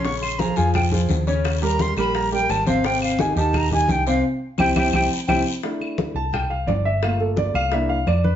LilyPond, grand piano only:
\new Staff \with { instrumentName = "Grand piano" } { \time 4/4 \key c \mixolydian \tempo 4 = 172 << { <des des' des''>4 <f f' aes'>8 <f f' aes'>4 <f f' aes'>4 <des des' des''>8~ | <des des' des''>8 <g g' bes'>4 <g g' bes'>4 <g g' bes'>4 <c c' c''>8 | <c c' c''>4 <ees ees' g'>8 <ees ees' g'>4 <ees ees' g'>4 <c c' c''>8 | r4 <c' e' g'>8 <c' e' g'>8 <c' e' g'>8 r8 <c' e' g'>8 r8 |
\key c \major r4. a''8 g''8 f''8 d''8 e''8 | f''8 a'8 d''8 f''8 e''8 f''8 d''8 b'8 | } \\ { r1 | r1 | r1 | r1 |
<a d' e'>4. r2 r8 | <a bes f'>2 <bes d' e'>8 r4. | } >> }